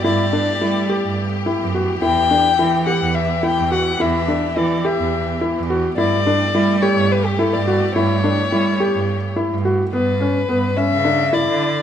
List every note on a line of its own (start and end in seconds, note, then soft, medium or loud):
0.00 1.99 A3 soft
0.00 9.88 B3 medium
0.00 5.94 G4 medium
0.04 0.29 G2 medium
0.04 0.22 E4 medium
0.04 1.14 D5 medium
0.33 0.50 D4 medium
0.61 0.86 G3 medium
0.61 0.79 E4 medium
0.89 1.24 G4 medium
1.04 1.28 G2 medium
1.46 1.63 E4 medium
1.60 1.97 F#2 medium
1.75 1.92 F#4 medium
2.02 2.27 E2 medium
2.02 5.94 E3 medium
2.02 2.19 E4 medium
2.02 2.83 G5 medium
2.31 2.48 D4 medium
2.59 2.84 E3 medium
2.59 2.76 E4 medium
2.87 3.21 G4 medium
2.87 3.16 F#5 medium
3.01 3.26 E2 medium
3.15 3.45 E5 medium
3.43 3.60 E4 medium
3.43 3.72 G5 medium
3.58 3.95 E2 medium
3.71 3.89 F#4 medium
3.71 4.03 F#5 medium
4.00 4.25 E2 medium
4.00 4.17 E4 medium
4.00 4.59 E5 medium
4.28 4.45 D4 medium
4.57 4.81 E3 medium
4.57 4.74 E4 medium
4.57 4.87 D5 medium
4.85 5.19 G4 medium
4.85 5.42 E5 medium
4.99 5.24 E2 medium
5.41 5.59 E4 medium
5.56 5.93 E2 medium
5.70 5.87 F#4 medium
5.97 6.23 G2 medium
5.97 9.88 A3 medium
5.97 6.15 E4 medium
5.97 9.88 G4 medium
5.97 6.84 D5 medium
6.27 6.44 D4 medium
6.55 6.79 G3 medium
6.55 6.72 E4 medium
6.82 7.17 G4 medium
6.82 7.13 C#5 medium
6.97 7.21 G2 medium
7.12 7.27 B4 medium
7.25 7.41 G4 medium
7.39 7.56 E4 medium
7.39 7.55 A4 medium
7.53 7.90 G2 medium
7.53 7.95 D5 medium
7.68 7.85 F#4 medium
7.96 8.20 G2 medium
7.96 8.13 E4 medium
7.96 9.32 C#5 medium
8.24 8.41 D4 medium
8.51 8.76 G3 medium
8.51 8.69 E4 medium
8.80 9.14 G4 medium
8.94 9.19 G2 medium
9.36 9.53 E4 medium
9.51 9.87 G2 medium
9.65 9.82 F#4 medium
9.92 10.41 G2 medium
9.92 10.10 B3 medium
9.92 10.78 B4 medium
10.21 10.38 C#4 medium
10.49 10.73 G2 medium
10.49 10.66 B3 medium
10.77 10.94 C#4 medium
10.77 11.35 E5 medium
10.91 11.40 C#3 medium
11.05 11.22 D4 medium
11.33 11.67 E4 medium
11.33 11.82 D5 medium
11.48 11.72 D3 medium